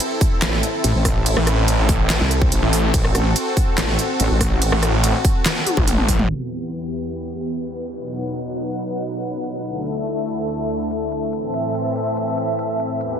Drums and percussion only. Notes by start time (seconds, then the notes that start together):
0.00 closed hi-hat, ride
0.21 kick, open hi-hat
0.42 snare, clap, closed hi-hat, ride
0.63 closed hi-hat
0.84 closed hi-hat, ride
1.05 kick, cross-stick, open hi-hat
1.26 closed hi-hat, ride
1.37 cross-stick
1.47 cross-stick, closed hi-hat
1.68 closed hi-hat, ride
1.89 kick, open hi-hat
2.10 snare, clap, closed hi-hat, ride
2.31 closed hi-hat
2.42 kick
2.52 closed hi-hat, ride
2.73 open hi-hat
2.94 kick, closed hi-hat, ride
3.05 cross-stick
3.15 cross-stick, closed hi-hat
3.36 closed hi-hat, ride
3.57 kick, open hi-hat
3.78 snare, clap, closed hi-hat, ride
3.99 closed hi-hat
4.20 closed hi-hat, ride
4.41 kick, cross-stick, open hi-hat
4.62 closed hi-hat, ride
4.72 cross-stick
4.83 cross-stick, closed hi-hat
5.04 closed hi-hat, ride
5.25 kick, open hi-hat
5.46 snare, clap, closed hi-hat, ride
5.67 closed hi-hat, high tom
5.77 kick, high tom
5.88 closed hi-hat, mid tom, ride
5.98 mid tom
6.09 kick, open hi-hat
6.19 mid tom
6.29 closed hi-hat, crash
6.71 closed hi-hat
6.92 closed hi-hat
7.13 closed hi-hat
7.34 closed hi-hat
7.55 closed hi-hat
7.76 closed hi-hat
7.97 closed hi-hat
8.18 closed hi-hat
8.39 closed hi-hat
8.60 closed hi-hat
8.81 closed hi-hat
9.02 closed hi-hat
9.23 closed hi-hat
9.44 closed hi-hat
9.65 closed hi-hat
9.86 closed hi-hat
10.07 closed hi-hat
10.28 closed hi-hat
10.49 closed hi-hat
10.70 closed hi-hat
10.91 closed hi-hat
11.12 closed hi-hat
11.33 closed hi-hat
11.54 closed hi-hat
11.75 closed hi-hat
11.96 closed hi-hat
12.17 closed hi-hat
12.38 closed hi-hat
12.59 closed hi-hat
12.80 closed hi-hat
13.01 closed hi-hat